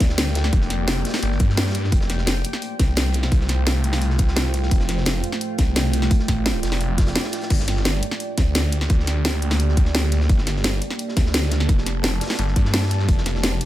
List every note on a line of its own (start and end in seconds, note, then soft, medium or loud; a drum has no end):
0.00 0.51 D2 loud
0.00 1.88 A#3 medium
0.00 1.88 G4 medium
0.00 1.88 D5 medium
0.00 7.46 G5 medium
0.00 kick loud
0.00 snare soft
0.00 closed hi-hat medium
0.09 snare medium
0.18 snare loud
0.18 snare soft
0.18 closed hi-hat medium
0.27 snare soft
0.35 snare loud
0.35 closed hi-hat medium
0.44 snare medium
0.53 1.04 F1 loud
0.53 kick loud
0.53 closed hi-hat medium
0.61 snare soft
0.70 snare soft
0.70 closed hi-hat medium
0.87 snare loud
0.87 closed hi-hat medium
1.05 snare medium
1.05 closed hi-hat medium
1.09 snare loud
1.09 closed hi-hat medium
1.13 snare medium
1.13 snare soft
1.13 snare medium
1.13 closed hi-hat medium
1.18 snare medium
1.18 closed hi-hat medium
1.22 1.39 G1 loud
1.22 closed hi-hat medium
1.32 snare soft
1.39 1.91 G2 loud
1.39 kick loud
1.39 closed hi-hat medium
1.50 snare medium
1.57 snare medium
1.57 snare loud
1.57 closed hi-hat medium
1.66 snare medium
1.66 closed hi-hat medium
1.71 snare medium
1.71 closed hi-hat medium
1.74 snare soft
1.74 closed hi-hat medium
1.84 snare medium
1.92 2.43 F1 loud
1.92 7.46 A3 medium
1.92 7.46 F4 medium
1.92 4.69 C5 medium
1.92 kick loud
1.92 closed hi-hat medium
1.92 closed hi-hat loud
2.01 snare medium
2.09 snare soft
2.09 closed hi-hat medium
2.18 snare medium
2.27 snare loud
2.27 closed hi-hat medium
2.44 closed hi-hat medium
2.53 snare medium
2.62 closed hi-hat medium
2.62 closed hi-hat loud
2.79 3.30 C2 loud
2.79 kick loud
2.79 snare soft
2.79 closed hi-hat medium
2.96 snare loud
2.96 closed hi-hat medium
3.13 closed hi-hat medium
3.23 snare medium
3.32 4.18 C2 loud
3.32 kick loud
3.32 closed hi-hat medium
3.41 snare soft
3.48 snare soft
3.48 closed hi-hat medium
3.66 snare loud
3.66 closed hi-hat medium
3.84 closed hi-hat medium
3.93 snare soft
3.93 snare medium
3.93 closed hi-hat soft
4.02 closed hi-hat medium
4.10 snare soft
4.18 4.70 C2 loud
4.18 kick loud
4.18 closed hi-hat medium
4.28 snare medium
4.36 snare loud
4.36 closed hi-hat medium
4.45 snare soft
4.54 snare soft
4.54 closed hi-hat medium
4.63 snare medium
4.71 5.22 F1 loud
4.71 13.05 D5 medium
4.71 kick loud
4.71 closed hi-hat loud
4.71 closed hi-hat medium
4.80 snare medium
4.88 snare soft
4.88 closed hi-hat medium
4.97 snare soft
5.05 snare loud
5.05 closed hi-hat medium
5.24 closed hi-hat loud
5.24 closed hi-hat medium
5.32 snare medium
5.41 closed hi-hat medium
5.58 6.09 C2 loud
5.58 kick loud
5.58 snare soft
5.58 closed hi-hat medium
5.76 snare loud
5.76 closed hi-hat medium
5.93 closed hi-hat loud
5.93 closed hi-hat medium
6.02 snare medium
6.11 kick loud
6.11 closed hi-hat medium
6.11 closed hi-hat loud
6.19 snare soft
6.28 6.62 A1 loud
6.28 kick medium
6.28 snare soft
6.28 closed hi-hat loud
6.28 closed hi-hat medium
6.46 snare loud
6.46 closed hi-hat medium
6.63 7.16 F1 loud
6.63 snare loud
6.63 closed hi-hat loud
6.63 closed hi-hat medium
6.72 snare soft
6.72 snare medium
6.81 closed hi-hat medium
6.98 kick loud
6.98 snare loud
6.98 closed hi-hat medium
6.98 closed hi-hat loud
7.07 snare loud
7.07 closed hi-hat medium
7.16 snare loud
7.16 closed hi-hat medium
7.24 snare loud
7.24 closed hi-hat medium
7.32 snare loud
7.32 closed hi-hat medium
7.32 closed hi-hat loud
7.41 snare loud
7.41 closed hi-hat medium
7.50 8.01 G1 loud
7.50 13.05 A#3 medium
7.50 13.05 G4 medium
7.50 10.27 G5 medium
7.50 kick loud
7.50 closed hi-hat medium
7.50 crash medium
7.60 snare medium
7.68 snare soft
7.68 snare medium
7.68 closed hi-hat medium
7.77 snare soft
7.85 snare loud
7.85 closed hi-hat loud
7.85 closed hi-hat medium
8.03 closed hi-hat medium
8.03 closed hi-hat loud
8.11 snare medium
8.20 closed hi-hat medium
8.38 8.89 D2 loud
8.38 kick loud
8.38 snare soft
8.38 closed hi-hat medium
8.55 snare loud
8.55 closed hi-hat medium
8.72 closed hi-hat loud
8.72 closed hi-hat medium
8.81 snare medium
8.90 9.76 D2 loud
8.90 kick loud
8.90 closed hi-hat loud
8.90 closed hi-hat medium
9.00 snare soft
9.07 snare medium
9.07 closed hi-hat medium
9.25 snare loud
9.25 closed hi-hat medium
9.42 closed hi-hat medium
9.50 snare soft
9.50 snare medium
9.50 closed hi-hat soft
9.60 closed hi-hat medium
9.69 snare soft
9.77 10.28 D2 loud
9.77 kick loud
9.77 closed hi-hat medium
9.85 snare medium
9.94 snare loud
9.94 closed hi-hat medium
10.03 snare soft
10.12 snare soft
10.12 closed hi-hat medium
10.21 snare medium
10.29 10.80 G1 loud
10.29 13.06 A5 medium
10.29 kick loud
10.29 closed hi-hat medium
10.38 snare medium
10.47 snare soft
10.47 closed hi-hat medium
10.56 snare soft
10.64 snare loud
10.64 closed hi-hat loud
10.64 closed hi-hat medium
10.82 closed hi-hat medium
10.90 snare medium
10.99 closed hi-hat medium
11.09 snare soft
11.17 11.68 D2 loud
11.17 kick loud
11.17 snare soft
11.17 closed hi-hat medium
11.26 snare soft
11.34 snare loud
11.34 closed hi-hat medium
11.42 snare soft
11.51 snare loud
11.51 closed hi-hat medium
11.60 snare medium
11.69 12.20 F1 loud
11.69 kick loud
11.69 closed hi-hat medium
11.78 snare soft
11.86 snare soft
11.86 closed hi-hat medium
12.03 snare loud
12.03 closed hi-hat loud
12.03 closed hi-hat medium
12.21 snare medium
12.21 closed hi-hat medium
12.25 snare medium
12.25 closed hi-hat medium
12.30 snare soft
12.30 snare medium
12.30 closed hi-hat medium
12.35 snare medium
12.35 closed hi-hat medium
12.39 12.55 G1 loud
12.39 closed hi-hat medium
12.47 snare soft
12.56 13.07 G2 loud
12.56 kick loud
12.56 closed hi-hat medium
12.65 snare medium
12.74 snare loud
12.74 snare medium
12.74 closed hi-hat medium
12.82 snare loud
12.82 closed hi-hat medium
12.87 snare medium
12.87 closed hi-hat medium
12.90 snare soft
12.90 closed hi-hat medium
12.99 snare soft
13.09 13.59 F1 loud
13.09 13.65 A3 medium
13.09 13.65 F4 medium
13.09 13.65 C5 medium
13.09 13.65 G5 medium
13.09 kick loud
13.09 closed hi-hat medium
13.18 snare medium
13.26 snare soft
13.26 closed hi-hat medium
13.35 snare soft
13.43 snare loud
13.43 closed hi-hat medium
13.61 closed hi-hat medium